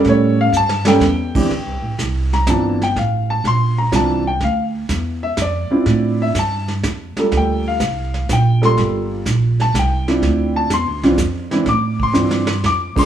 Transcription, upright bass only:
X:1
M:3/4
L:1/8
Q:"Swing" 1/4=124
K:Gdor
V:1 name="Upright bass" clef=bass
A,,2 G,,2 E,,2 | (3D,, C,, A,,, C,,2 G,,,2 | A,,,2 B,,,2 C,,2 | D,,2 E,,2 F,, z |
A,,2 G,,2 F,, z | D,,2 C,,2 B,,,2 | G,,,2 B,,,2 C,,2 | D,,2 (3E,, D,, C,, F,,2 |
A,,2 G,,2 F,, z |]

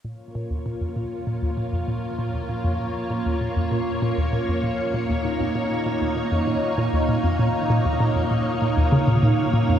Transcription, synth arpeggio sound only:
X:1
M:4/4
L:1/16
Q:1/4=98
K:Bbm
V:1 name="Synth arpeggio sound" clef=bass
B,, z B,, E,, B,, F,, B,, z B,, E,, B,, F,, B,, z B,, E,, | B,, F,, B,, z B,, E,, B,, F,, B,, z B,, E,, B,, F,, B,, z | B,, E,, B,, F,, B,, z B,, E,, B,, F,, B,, z B,, E,, B,, F,, | B,, z B,, E,, B,, F,, B,, z B,, E,, D, B,, B,, z B,, F,, |]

